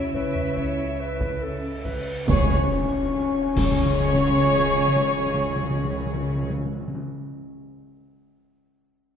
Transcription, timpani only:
2.28 2.35 C#3 medium
2.35 2.43 C#3 medium
2.43 2.49 C#3 medium
2.49 2.57 C#3 medium
3.56 3.63 C#3 medium
3.63 3.71 C#3 medium
3.71 3.78 C#3 medium
3.79 3.86 C#3 medium
3.86 3.93 C#3 medium
3.93 4.00 C#3 medium
4.00 4.07 C#3 medium
4.07 4.14 C#3 medium
4.14 4.21 C#3 medium
4.21 4.29 C#3 medium
4.29 4.37 C#3 medium
4.37 4.44 C#3 medium
4.44 4.51 C#3 medium
4.51 4.58 C#3 medium
4.58 4.65 C#3 medium
4.66 4.74 C#3 medium
4.74 4.81 C#3 medium
4.81 4.88 C#3 medium
4.88 4.95 C#3 medium
4.96 5.03 C#3 medium
5.04 5.11 C#3 medium
5.11 5.18 C#3 medium
5.19 5.26 C#3 medium
5.26 5.33 C#3 medium
5.34 5.40 C#3 medium
5.40 5.48 C#3 medium
5.48 5.56 C#3 medium
5.56 5.63 C#3 medium
5.63 5.70 C#3 medium
5.70 5.77 C#3 medium
5.77 5.84 C#3 medium
5.85 5.92 C#3 medium
5.92 5.99 C#3 medium
5.99 6.06 C#3 medium
6.06 6.14 C#3 medium
6.14 6.21 C#3 medium
6.21 6.28 C#3 medium
6.28 6.35 C#3 medium
6.35 6.43 C#3 medium
6.43 6.50 C#3 medium
6.50 6.57 C#3 medium
6.57 6.65 C#3 medium
6.65 6.72 C#3 medium
6.73 6.80 C#3 medium
6.80 6.87 C#3 medium
6.88 6.95 C#3 medium
6.95 7.02 C#3 medium

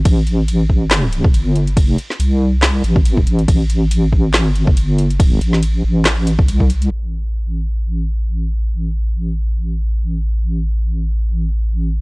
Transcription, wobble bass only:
0.05 1.32 A1 loud
1.34 1.78 G1 loud
1.78 1.97 F#1 loud
2.20 2.82 C2 loud
2.84 3.25 A1 loud
3.27 3.47 A1 loud
3.48 4.37 A1 loud
4.37 4.63 G#1 loud
4.63 4.75 G1 loud
4.77 5.40 G1 loud
5.41 5.82 A1 loud
5.84 6.47 A1 medium
6.48 6.90 C2 loud
6.91 12.01 A1 medium

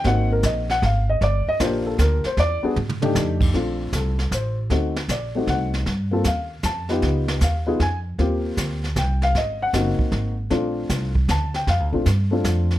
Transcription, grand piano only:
0.05 0.64 A#3 medium
0.05 0.64 C4 medium
0.05 0.65 D#4 medium
0.05 0.65 F#4 medium
0.05 0.31 F#5 medium
0.32 0.44 A#4 medium
0.46 0.70 D#5 medium
0.71 0.83 F#5 medium
0.85 1.09 F5 medium
1.10 1.21 D#5 medium
1.23 1.47 D5 medium
1.49 1.60 D#5 loud
1.60 2.19 A#3 medium
1.60 2.19 D4 medium
1.60 2.20 F4 medium
1.60 2.20 G4 medium
1.60 1.85 C5 medium
1.86 1.99 A4 medium
2.01 2.25 A#4 medium
2.26 2.38 C5 medium
2.40 2.63 D5 loud
2.63 2.75 B3 medium
2.63 2.75 D4 medium
2.63 2.75 F#4 medium
2.63 2.76 G#4 medium
3.02 3.51 A3 medium
3.02 3.51 D4 medium
3.02 3.51 D#4 medium
3.02 3.52 G4 medium
3.54 4.13 A3 medium
3.54 4.13 C4 soft
3.54 4.13 D4 soft
3.54 4.14 F4 medium
3.96 4.30 A4 medium
4.34 4.58 C5 medium
4.70 4.93 A3 medium
4.70 4.93 C4 medium
4.70 4.94 D#4 soft
4.70 4.94 F#4 medium
5.11 5.46 D5 medium
5.35 5.84 A3 medium
5.35 5.84 C4 soft
5.35 5.84 D#4 soft
5.35 5.85 F#4 medium
5.49 5.73 F#5 medium
6.11 6.23 A#3 medium
6.11 6.24 C4 medium
6.11 6.24 F4 medium
6.11 6.24 A4 medium
6.27 6.62 F5 medium
6.65 6.89 A5 medium
6.89 7.39 B3 medium
6.89 7.39 D#4 medium
6.89 7.39 F4 medium
6.89 7.39 G4 medium
7.43 7.78 F5 medium
7.67 7.78 B3 medium
7.67 7.79 D#4 medium
7.67 7.79 F4 medium
7.67 7.79 G#4 medium
7.82 7.97 G#5 medium
8.19 8.78 A#3 medium
8.19 8.78 C4 medium
8.19 8.79 F4 medium
8.19 8.79 G4 medium
8.98 9.22 G5 medium
9.23 9.35 F5 medium
9.37 9.61 D#5 medium
9.62 9.70 F#5 medium
9.74 10.33 A#3 medium
9.74 10.33 C4 medium
9.74 10.33 D#4 medium
9.74 10.34 F#4 medium
10.50 11.10 A3 medium
10.50 11.10 C4 medium
10.50 11.10 D4 medium
10.50 11.11 F4 medium
11.31 11.55 A5 medium
11.56 11.68 G5 medium
11.69 11.84 F5 medium
11.92 12.04 A3 medium
11.92 12.05 C4 soft
11.92 12.05 D4 medium
11.92 12.05 F4 medium
12.31 12.79 A3 medium
12.31 12.79 C4 medium
12.31 12.79 D4 medium
12.31 12.79 F4 medium

